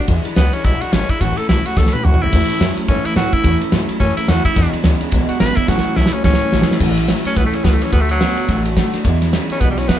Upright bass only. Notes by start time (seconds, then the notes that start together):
0.08 E2
0.25 muted upright bass stroke
0.36 C#2
0.53 muted upright bass stroke
0.64 B1
0.81 muted upright bass stroke
0.92 G#1
1.09 muted upright bass stroke
1.21 A1
1.37 muted upright bass stroke
1.49 B1
1.65 muted upright bass stroke
1.77 C#2
1.93 muted upright bass stroke
2.05 D2
2.21 muted upright bass stroke
2.33 E2
2.49 muted upright bass stroke
2.60 F#2
2.77 muted upright bass stroke
2.88 G#2
3.05 muted upright bass stroke
3.16 A2
3.33 muted upright bass stroke
3.44 E2
3.61 muted upright bass stroke
3.72 G#2
3.89 muted upright bass stroke
4.00 F#2
4.17 muted upright bass stroke
4.28 E2
4.45 muted upright bass stroke
4.56 E2
4.73 muted upright bass stroke
4.83 D2
5.00 muted upright bass stroke
5.12 B1
5.29 muted upright bass stroke
5.40 G#1
5.57 muted upright bass stroke
5.68 A1
5.85 muted upright bass stroke
5.96 B1
6.13 muted upright bass stroke
6.24 C#2
6.40 muted upright bass stroke
6.52 A1
6.69 muted upright bass stroke
6.81 A1
7.25 muted upright bass stroke
7.37 B1
7.53 muted upright bass stroke
7.65 C#2
7.81 muted upright bass stroke
7.93 D2
8.37 muted upright bass stroke
8.49 A1
8.94 muted upright bass stroke
9.05 E2
9.50 muted upright bass stroke
9.61 B1